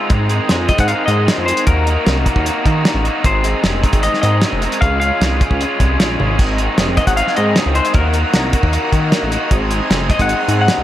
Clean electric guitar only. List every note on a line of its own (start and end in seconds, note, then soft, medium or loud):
0.69 0.78 D#5 medium
0.80 0.88 F#5 medium
0.88 1.05 F5 loud
1.06 1.48 D#5 medium
1.46 1.65 C5 medium
1.67 2.81 A#4 medium
3.26 4.00 C5 medium
4.03 4.20 D#5 medium
4.22 4.80 D#5 medium
4.81 4.99 F5 loud
5.00 5.75 F5 loud
6.97 7.07 D#5 medium
7.07 7.11 F#5 medium
7.17 7.36 F5 medium
7.37 7.77 D#5 medium
7.75 7.95 C5 medium
7.95 9.08 A#4 medium
10.11 10.20 D#5 medium
10.22 10.60 F#5 medium
10.61 10.83 F#5 medium